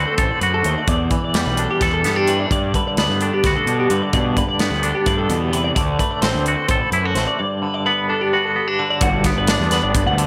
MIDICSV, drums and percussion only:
0, 0, Header, 1, 2, 480
1, 0, Start_track
1, 0, Key_signature, 1, "major"
1, 0, Tempo, 465116
1, 911, Time_signature, 7, 3, 24, 8
1, 10596, End_track
2, 0, Start_track
2, 0, Title_t, "Drums"
2, 184, Note_on_c, 9, 42, 76
2, 186, Note_on_c, 9, 36, 92
2, 287, Note_off_c, 9, 42, 0
2, 289, Note_off_c, 9, 36, 0
2, 428, Note_on_c, 9, 42, 56
2, 531, Note_off_c, 9, 42, 0
2, 664, Note_on_c, 9, 42, 55
2, 768, Note_off_c, 9, 42, 0
2, 904, Note_on_c, 9, 42, 73
2, 905, Note_on_c, 9, 36, 87
2, 1007, Note_off_c, 9, 42, 0
2, 1008, Note_off_c, 9, 36, 0
2, 1142, Note_on_c, 9, 42, 55
2, 1144, Note_on_c, 9, 36, 68
2, 1245, Note_off_c, 9, 42, 0
2, 1247, Note_off_c, 9, 36, 0
2, 1384, Note_on_c, 9, 42, 77
2, 1393, Note_on_c, 9, 38, 101
2, 1487, Note_off_c, 9, 42, 0
2, 1496, Note_off_c, 9, 38, 0
2, 1624, Note_on_c, 9, 42, 58
2, 1728, Note_off_c, 9, 42, 0
2, 1867, Note_on_c, 9, 36, 96
2, 1868, Note_on_c, 9, 42, 80
2, 1878, Note_on_c, 9, 38, 30
2, 1970, Note_off_c, 9, 36, 0
2, 1972, Note_off_c, 9, 42, 0
2, 1981, Note_off_c, 9, 38, 0
2, 2108, Note_on_c, 9, 42, 56
2, 2118, Note_on_c, 9, 38, 30
2, 2212, Note_off_c, 9, 42, 0
2, 2221, Note_off_c, 9, 38, 0
2, 2347, Note_on_c, 9, 42, 53
2, 2451, Note_off_c, 9, 42, 0
2, 2589, Note_on_c, 9, 36, 86
2, 2592, Note_on_c, 9, 42, 70
2, 2692, Note_off_c, 9, 36, 0
2, 2695, Note_off_c, 9, 42, 0
2, 2829, Note_on_c, 9, 36, 65
2, 2832, Note_on_c, 9, 42, 49
2, 2932, Note_off_c, 9, 36, 0
2, 2935, Note_off_c, 9, 42, 0
2, 3068, Note_on_c, 9, 42, 73
2, 3078, Note_on_c, 9, 38, 97
2, 3171, Note_off_c, 9, 42, 0
2, 3181, Note_off_c, 9, 38, 0
2, 3309, Note_on_c, 9, 42, 51
2, 3412, Note_off_c, 9, 42, 0
2, 3547, Note_on_c, 9, 42, 75
2, 3548, Note_on_c, 9, 36, 92
2, 3556, Note_on_c, 9, 38, 32
2, 3650, Note_off_c, 9, 42, 0
2, 3651, Note_off_c, 9, 36, 0
2, 3660, Note_off_c, 9, 38, 0
2, 3790, Note_on_c, 9, 42, 54
2, 3894, Note_off_c, 9, 42, 0
2, 4025, Note_on_c, 9, 42, 52
2, 4128, Note_off_c, 9, 42, 0
2, 4264, Note_on_c, 9, 42, 68
2, 4266, Note_on_c, 9, 36, 93
2, 4367, Note_off_c, 9, 42, 0
2, 4369, Note_off_c, 9, 36, 0
2, 4507, Note_on_c, 9, 36, 65
2, 4507, Note_on_c, 9, 42, 54
2, 4610, Note_off_c, 9, 36, 0
2, 4610, Note_off_c, 9, 42, 0
2, 4741, Note_on_c, 9, 42, 74
2, 4751, Note_on_c, 9, 38, 97
2, 4845, Note_off_c, 9, 42, 0
2, 4854, Note_off_c, 9, 38, 0
2, 4985, Note_on_c, 9, 42, 52
2, 5088, Note_off_c, 9, 42, 0
2, 5223, Note_on_c, 9, 42, 78
2, 5226, Note_on_c, 9, 36, 95
2, 5326, Note_off_c, 9, 42, 0
2, 5329, Note_off_c, 9, 36, 0
2, 5466, Note_on_c, 9, 42, 59
2, 5569, Note_off_c, 9, 42, 0
2, 5710, Note_on_c, 9, 42, 57
2, 5813, Note_off_c, 9, 42, 0
2, 5946, Note_on_c, 9, 36, 91
2, 5948, Note_on_c, 9, 42, 76
2, 6049, Note_off_c, 9, 36, 0
2, 6051, Note_off_c, 9, 42, 0
2, 6185, Note_on_c, 9, 36, 63
2, 6187, Note_on_c, 9, 42, 51
2, 6288, Note_off_c, 9, 36, 0
2, 6290, Note_off_c, 9, 42, 0
2, 6420, Note_on_c, 9, 42, 78
2, 6430, Note_on_c, 9, 38, 101
2, 6523, Note_off_c, 9, 42, 0
2, 6533, Note_off_c, 9, 38, 0
2, 6665, Note_on_c, 9, 42, 51
2, 6768, Note_off_c, 9, 42, 0
2, 6899, Note_on_c, 9, 42, 73
2, 6903, Note_on_c, 9, 36, 93
2, 7002, Note_off_c, 9, 42, 0
2, 7006, Note_off_c, 9, 36, 0
2, 7144, Note_on_c, 9, 42, 56
2, 7247, Note_off_c, 9, 42, 0
2, 7383, Note_on_c, 9, 42, 50
2, 7392, Note_on_c, 9, 38, 29
2, 7486, Note_off_c, 9, 42, 0
2, 7496, Note_off_c, 9, 38, 0
2, 9298, Note_on_c, 9, 42, 91
2, 9301, Note_on_c, 9, 36, 101
2, 9401, Note_off_c, 9, 42, 0
2, 9404, Note_off_c, 9, 36, 0
2, 9537, Note_on_c, 9, 42, 65
2, 9541, Note_on_c, 9, 36, 71
2, 9547, Note_on_c, 9, 38, 31
2, 9640, Note_off_c, 9, 42, 0
2, 9645, Note_off_c, 9, 36, 0
2, 9650, Note_off_c, 9, 38, 0
2, 9778, Note_on_c, 9, 42, 101
2, 9787, Note_on_c, 9, 38, 112
2, 9881, Note_off_c, 9, 42, 0
2, 9890, Note_off_c, 9, 38, 0
2, 10021, Note_on_c, 9, 42, 72
2, 10031, Note_on_c, 9, 38, 32
2, 10125, Note_off_c, 9, 42, 0
2, 10134, Note_off_c, 9, 38, 0
2, 10264, Note_on_c, 9, 36, 100
2, 10264, Note_on_c, 9, 42, 97
2, 10367, Note_off_c, 9, 42, 0
2, 10368, Note_off_c, 9, 36, 0
2, 10509, Note_on_c, 9, 42, 66
2, 10596, Note_off_c, 9, 42, 0
2, 10596, End_track
0, 0, End_of_file